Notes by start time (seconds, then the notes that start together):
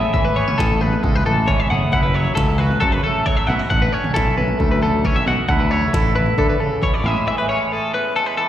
Already playing: A2 G#4 E5
0.14 G#1 E3 E5, kick, floor tom
0.25 B4
0.36 B3 C#5
0.48 C#4, floor tom, mid tom
0.58 A1 G#4 A4, kick, snare
0.81 E2 B4, floor tom, mid tom
0.93 mid tom
1.03 C#2 G#3 A4, kick
1.16 B4
1.26 A1 E3 A4, floor tom
1.48 G#1 C#4 C#5, kick, floor tom
1.60 E5
1.70 F#1 A2 G#4 F#5, mid tom
1.91 F#1 F#2 E4 F#5, kick, floor tom
2.03 B4
2.14 F#3 C#5
2.25 floor tom
2.35 C#2 C#4 A4, kick, snare
2.58 F#4 B4, floor tom
2.71 mid tom
2.80 F#2 C#3 A4, kick
2.92 B4
3.04 A3 A4, floor tom
3.26 F#3 C#5, kick, floor tom
3.37 E5
3.47 B1 B2 E4 F#5, mid tom
3.59 F#4
3.70 A1 D3 F#5, kick, floor tom
3.82 B4
3.93 C#4 C#5
4.04 floor tom, mid tom
4.14 B1 E4 A4, kick, snare
4.37 F#2 B4, floor tom, mid tom
4.48 mid tom
4.59 D2 A3 A4, kick
4.71 B4
4.82 D3 A4, floor tom
5.05 C#4 C#5, kick, floor tom
5.16 B1 E5
5.26 B1 B2 F#4 F#5, mid tom
5.48 D2 D3 E4 F#5, kick, floor tom
5.60 B4
5.71 A3 C#5
5.82 floor tom
5.93 A1 E4 A4, kick, snare
6.15 E4 B4, floor tom
6.26 mid tom
6.38 A2 D3 A4, kick
6.49 B4
6.60 C#3 A4, floor tom
6.82 B2 C#5, kick, floor tom
6.94 D5
7.04 A1 A2 E3 G#3 C#4 G#4 E5, mid tom
7.27 E3 E5
7.38 B4
7.49 C#4 C#5
7.72 G#4 A4
7.94 E2 B4
8.16 G#3 A4
8.26 B4
8.37 E3 A4